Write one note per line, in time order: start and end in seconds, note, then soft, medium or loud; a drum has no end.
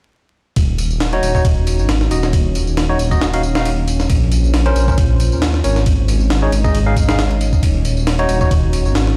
0.56 1.19 D#1 medium
0.56 5.82 A#3 medium
0.56 7.59 C#4 medium
0.56 4.06 D#4 medium
0.56 4.06 F#4 medium
0.56 5.82 C#5 medium
0.56 kick loud
0.56 ride medium
0.56 tambourine soft
0.78 ride medium
0.78 tambourine medium
0.91 tambourine soft
1.00 snare loud
1.00 ride medium
1.13 1.32 D#4 medium
1.13 1.32 F#4 medium
1.13 1.32 C#5 loud
1.13 ride soft
1.23 1.40 D#1 medium
1.23 ride medium
1.23 tambourine medium
1.35 1.43 D#4 medium
1.35 1.43 F#4 medium
1.35 1.43 C#5 medium
1.35 kick medium
1.35 tambourine soft
1.45 1.80 D#1 medium
1.45 kick loud
1.45 ride medium
1.45 tambourine soft
1.67 ride medium
1.67 tambourine medium
1.79 2.07 G#1 medium
1.79 tambourine soft
1.89 snare loud
1.89 ride medium
1.89 tambourine soft
2.01 snare soft
2.11 2.96 D#1 loud
2.11 2.26 D#4 medium
2.11 2.26 F#4 medium
2.11 2.26 D#5 medium
2.11 ride medium
2.11 tambourine medium
2.23 snare soft
2.23 tambourine soft
2.33 kick loud
2.33 ride medium
2.33 tambourine soft
2.55 ride medium
2.55 tambourine medium
2.67 tambourine soft
2.77 snare loud
2.77 ride medium
2.77 tambourine soft
2.89 2.97 D#4 medium
2.89 2.97 F#4 medium
2.89 2.97 C#5 medium
2.99 3.17 D#1 medium
2.99 ride medium
2.99 tambourine medium
3.11 3.25 D#4 medium
3.11 3.25 F#4 medium
3.11 3.25 D#5 medium
3.11 kick medium
3.11 tambourine soft
3.21 4.06 D#1 medium
3.21 snare loud
3.21 tambourine soft
3.34 3.42 D#4 medium
3.34 3.42 F#4 medium
3.34 3.42 F5 medium
3.34 ride medium
3.43 tambourine medium
3.55 3.69 D#4 medium
3.55 3.69 F#4 medium
3.55 3.69 F5 medium
3.55 snare loud
3.55 tambourine soft
3.65 ride medium
3.65 tambourine soft
3.88 ride medium
3.88 tambourine medium
4.00 snare soft
4.00 tambourine soft
4.10 4.72 A#1 medium
4.10 5.85 F4 medium
4.10 5.85 C5 medium
4.10 kick loud
4.10 ride medium
4.10 tambourine soft
4.32 ride medium
4.32 tambourine medium
4.44 tambourine soft
4.54 snare loud
4.54 ride medium
4.66 4.85 C#4 medium
4.66 4.85 A#4 medium
4.66 4.85 C5 loud
4.66 ride soft
4.76 4.93 A#1 medium
4.76 ride medium
4.76 tambourine medium
4.88 4.96 C#4 medium
4.88 4.96 A#4 medium
4.88 4.96 C5 medium
4.88 kick medium
4.88 tambourine soft
4.98 5.34 A#1 medium
4.98 kick loud
4.98 ride medium
4.98 tambourine soft
5.20 ride medium
5.20 tambourine medium
5.32 5.60 D#2 medium
5.32 tambourine soft
5.42 snare loud
5.42 ride medium
5.42 tambourine soft
5.54 snare soft
5.64 6.49 G#1 loud
5.64 5.79 C#4 medium
5.64 5.79 A#4 medium
5.64 5.79 C#5 medium
5.64 ride medium
5.64 tambourine medium
5.76 snare soft
5.76 tambourine soft
5.86 7.61 G#3 medium
5.86 9.17 D#4 medium
5.86 9.17 C#5 medium
5.86 7.61 D#5 medium
5.86 kick loud
5.86 ride medium
5.86 tambourine soft
6.08 ride medium
6.08 tambourine medium
6.20 tambourine soft
6.30 snare loud
6.30 ride medium
6.30 tambourine soft
6.42 6.50 D#4 medium
6.42 6.50 G#4 medium
6.42 6.50 C#5 medium
6.52 6.70 G#1 medium
6.52 ride medium
6.52 tambourine medium
6.64 6.78 D#4 medium
6.64 6.78 G#4 medium
6.64 6.78 D#5 medium
6.64 kick medium
6.64 tambourine soft
6.74 6.96 G#1 medium
6.74 ride medium
6.74 tambourine soft
6.86 6.94 D#4 medium
6.86 6.94 G#4 medium
6.86 6.94 F5 medium
6.96 7.59 G#1 loud
6.96 kick medium
6.96 ride medium
6.96 tambourine medium
7.08 7.22 D#4 medium
7.08 7.22 G#4 medium
7.08 7.22 F5 medium
7.08 snare loud
7.08 tambourine soft
7.18 snare loud
7.18 ride medium
7.18 tambourine soft
7.31 ride soft
7.41 ride medium
7.41 tambourine medium
7.53 kick medium
7.53 tambourine soft
7.63 8.25 D#1 medium
7.63 9.17 A#3 medium
7.63 9.17 C#4 medium
7.63 9.17 F#4 medium
7.63 kick loud
7.63 ride medium
7.63 tambourine soft
7.85 ride medium
7.85 tambourine medium
7.97 tambourine soft
8.07 snare loud
8.07 ride medium
8.19 8.38 D#4 medium
8.19 8.38 F#4 medium
8.19 8.38 C#5 loud
8.19 ride soft
8.29 8.46 D#1 medium
8.29 ride medium
8.29 tambourine medium
8.41 8.49 D#4 medium
8.41 8.49 F#4 medium
8.41 8.49 C#5 medium
8.41 kick medium
8.41 tambourine soft
8.51 8.87 D#1 medium
8.51 kick loud
8.51 ride medium
8.51 tambourine soft
8.73 ride medium
8.73 tambourine medium
8.85 9.13 G#1 medium
8.85 tambourine soft
8.95 snare loud
8.95 ride medium
8.95 tambourine soft
9.07 snare soft